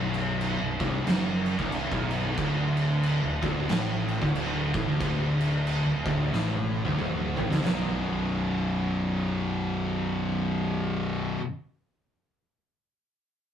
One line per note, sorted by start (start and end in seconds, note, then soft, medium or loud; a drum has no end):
0.00 0.56 B0 loud
0.00 0.60 B1 loud
0.14 crash medium
0.41 crash medium
0.60 0.79 B0 medium
0.60 0.80 B1 medium
0.80 1.05 C1 loud
0.80 1.06 C2 loud
0.80 kick loud
0.80 crash medium
1.06 1.55 F#1 medium
1.06 1.58 F#2 loud
1.06 snare loud
1.06 crash medium
1.46 crash medium
1.59 1.89 C1 medium
1.59 1.91 C2 loud
1.59 kick medium
1.72 crash medium
1.92 2.34 B0 medium
1.92 2.37 B1 loud
1.92 kick loud
2.11 crash medium
2.37 3.19 D1 medium
2.37 3.22 D2 loud
2.37 kick loud
2.37 crash medium
2.77 crash medium
3.03 crash medium
3.24 3.42 D1 medium
3.24 3.42 D2 medium
3.43 3.67 D1 loud
3.43 3.68 D2 loud
3.43 kick loud
3.43 crash medium
3.68 4.17 A1 loud
3.68 4.21 A2 loud
3.68 snare loud
3.68 crash medium
4.08 crash medium
4.21 4.34 D1 loud
4.21 4.34 D2 loud
4.21 kick medium
4.35 4.71 D1 loud
4.35 4.73 D2 loud
4.35 crash medium
4.74 4.86 A1 loud
4.74 4.86 A2 loud
4.74 kick loud
4.74 crash medium
4.87 4.99 D1 loud
4.87 4.99 D2 loud
5.01 5.82 D1 loud
5.01 5.84 D2 loud
5.01 kick loud
5.01 crash medium
5.41 crash medium
5.67 crash medium
5.86 6.04 D1 medium
5.86 6.05 D2 medium
6.06 6.30 D1 loud
6.06 6.32 D2 medium
6.06 kick loud
6.06 crash medium
6.31 6.80 A1 medium
6.31 6.84 A2 loud
6.31 snare medium
6.52 high tom medium
6.84 6.96 D1 loud
6.84 6.97 D2 loud
6.84 mid tom medium
6.97 7.34 D1 medium
6.97 7.36 D2 loud
6.97 mid tom loud
7.37 7.49 A1 loud
7.37 7.49 A2 loud
7.37 floor tom loud
7.50 7.62 D1 loud
7.50 7.61 D2 loud
7.50 snare medium
7.62 11.35 B0 medium
7.62 11.38 B1 loud
7.62 11.40 F#2 loud
7.62 snare loud
7.62 floor tom loud
7.66 11.43 B2 loud